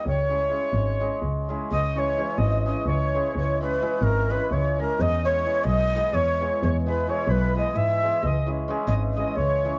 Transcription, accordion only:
\new Staff \with { instrumentName = "Accordion" } { \time 7/8 \key cis \minor \tempo 4 = 129 cis''2~ cis''8 r4 | dis''8 cis''4 dis''8 dis''8 cis''4 | cis''8 b'4 ais'8 b'8 cis''8 ais'8 | dis''8 cis''4 dis''4 cis''4 |
cis''8 b'8 cis''8 b'8 dis''8 e''4 | dis''8 r4 dis''8 dis''8 cis''4 | }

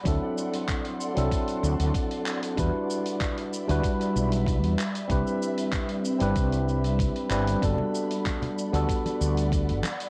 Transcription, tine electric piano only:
\new Staff \with { instrumentName = "Tine electric piano" } { \time 4/4 \key g \major \tempo 4 = 95 <fis c' d' e' a'>4.~ <fis c' d' e' a'>16 <fis c' d' e' a'>2~ <fis c' d' e' a'>16 | <g d' e' fis' b'>4.~ <g d' e' fis' b'>16 <g d' e' fis' b'>4.~ <g d' e' fis' b'>16 r8 | <c' d' e' g' b'>4.~ <c' d' e' g' b'>16 <c' d' e' g' b'>4.~ <c' d' e' g' b'>16 <c' d' e' g' b'>16 r16 | <g b d' fis' a'>4.~ <g b d' fis' a'>16 <g b d' fis' a'>4.~ <g b d' fis' a'>16 r8 | }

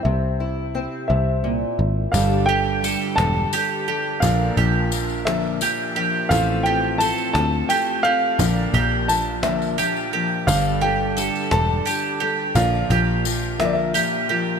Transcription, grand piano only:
\new Staff \with { instrumentName = "Grand piano" } { \time 6/8 \key g \dorian \tempo 4. = 58 r2. | <g,, g, g d' a' d''>2. | <bes,, bes, f d' bes' d''>2. | <a,, a, f c' a' c''>2. |
<bes,, bes, f d' bes' d''>2. | <g,, g, g d' a' d''>2. | <bes,, bes, f d' bes' d''>2. | }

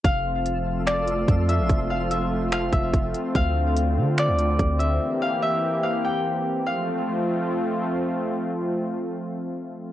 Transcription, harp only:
\new Staff \with { instrumentName = "Harp" } { \time 4/4 \key f \major \tempo 4 = 145 f''2 d''4. e''8 | r8 f''8 e''4 f''8 e''8 r4 | f''2 d''4. e''8 | r8 f''8 e''4 f''8 g''8 r4 |
f''2. r4 | r1 | }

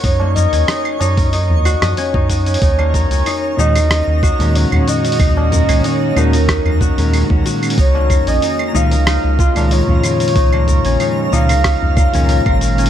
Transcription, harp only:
\new Staff \with { instrumentName = "Harp" } { \time 4/4 \key ees \minor \tempo 4 = 93 ees'16 bes16 bes'16 des'16 ees'16 r16 ees'16 bes'16 ees'16 r16 ges'16 ees''16 des'16 ees'16 ges'16 des'16 | ees'16 bes16 bes'16 des'16 ees'16 r16 ees'16 bes'16 ees'16 r16 ges'16 r8. ges'16 r16 | ees'16 bes16 bes'16 des'16 ees'16 r16 ees'16 bes'16 ees'16 r16 ges'16 r8. ges'16 r16 | ees'16 bes16 bes'16 des'16 ees'16 r16 ees'16 bes'16 ees'16 r16 f'16 r8. f'16 r16 |
ees'16 bes16 bes'16 des'16 ees'16 r16 ees'16 bes'16 ees'16 r16 f'16 des'16 bes'16 bes'16 bes'16 des'16 | }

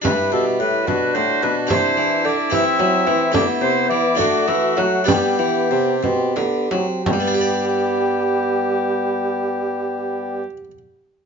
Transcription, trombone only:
\new Staff \with { instrumentName = "Trombone" } { \time 6/8 \key g \major \tempo 4. = 65 e'4. d'4.~ | d'4. c'4. | b4. a4. | b4. c'8 b8 c'8 |
b2.~ | b2. | }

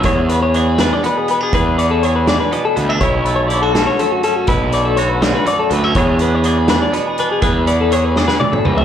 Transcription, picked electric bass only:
\new Staff \with { instrumentName = "Picked electric bass" } { \clef bass \time 6/8 \key e \mixolydian \tempo 4. = 81 e,2 r4 | e,2 r8 d,8 | b,,2 r4 | b,,2 r8 d,8 |
e,2 r4 | e,2 r8 cis,8 | }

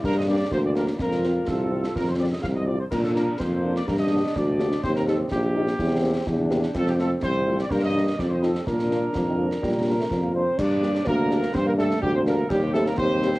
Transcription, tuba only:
\new Staff \with { instrumentName = "Tuba" } { \clef bass \time 2/4 \key g \minor \tempo 4 = 125 g,4 d,4 | f,4 c,4 | f,4 c,4 | bes,4 f,4 |
g,4 d,4 | ees,4 bes,,4 | e,4 e,4 | f,4 c,4 |
g,4 f,4 | bes,4 f,4 | bes,4 f,4 | g,4 d,4 |
g,4 d,4 | ees,4 ees,4 | }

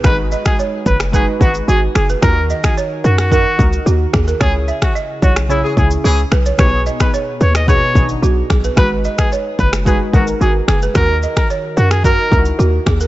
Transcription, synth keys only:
\new Staff \with { instrumentName = "Synth keys" } { \time 4/4 \key gis \minor \tempo 4 = 110 <gis dis' fis' ais' b'>2 <gis dis' fis' b'>8 <gis dis' fis' b'>4. | <dis dis' eis' fis' ais'>2 <dis dis' fis' ais'>8 <dis dis' fis' ais'>4. | <cis cis' e' gis'>2 <cis cis' e' gis'>8 <cis cis' e' gis'>4. | <b, b dis' g' gis'>2 <b, b dis' gis'>8 <b, b d' dis' gis'>4. |
<gis dis' fis' b'>2 <gis dis' fis' b'>8 <gis dis' fis' ais'>4. | <dis dis' fis' ais'>2 <dis dis' fis' ais'>8 <dis dis' e' fis' ais'>4. | }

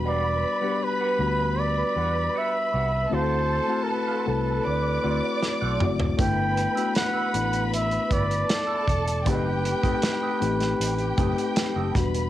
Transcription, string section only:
\new Staff \with { instrumentName = "String section" } { \time 4/4 \key b \phrygian \tempo 4 = 78 <b' b''>1 | <a' a''>2 <d'' d'''>2 | <b' b''>2. <a' a''>4 | <g' g''>2 <g' g''>4. <b' b''>8 | }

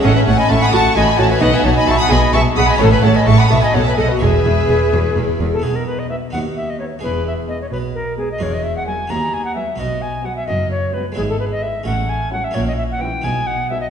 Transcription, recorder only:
\new Staff \with { instrumentName = "Recorder" } { \time 6/8 \key e \major \tempo 4. = 87 a'16 b'16 cis''16 dis''16 e''16 fis''16 fis''8 dis''8 cis''16 b'16 | b'16 b'16 cis''16 dis''16 e''16 fis''16 dis''8 e''8 fis''16 dis''16 | a'16 b'16 cis''16 dis''16 e''16 fis''16 e''16 dis''16 cis''16 b'16 a'16 fis'16 | gis'2~ gis'8 r16 a'16 |
\key b \major gis'16 ais'16 b'16 dis''16 e''8 fis''8 e''16 dis''16 cis''8 | b'8 e''8 dis''16 cis''16 b'8 ais'8 gis'16 dis''16 | cis''16 dis''16 e''16 fis''16 gis''8 ais''8 gis''16 fis''16 e''8 | dis''8 gis''8 fis''16 e''16 dis''8 cis''8 b'16 r16 |
\key e \major gis'16 a'16 b'16 dis''16 e''8 fis''8 gis''8 fis''16 e''16 | cis''16 dis''16 e''16 fis''16 g''8 gis''8 fis''8 e''16 dis''16 | }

